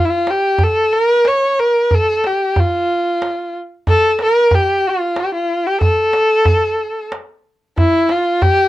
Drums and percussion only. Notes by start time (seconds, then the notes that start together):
0.27 tombak tek
0.58 tombak dum
1.25 tombak tek
1.91 tombak dum
2.24 tombak tek
2.56 tombak dum
3.22 tombak tek
3.87 tombak dum
4.19 tombak tek
4.51 tombak dum
5.16 tombak tek
5.81 tombak dum
6.13 tombak tek
6.45 tombak dum
7.12 tombak tek
7.78 tombak dum
8.09 tombak tek
8.42 tombak dum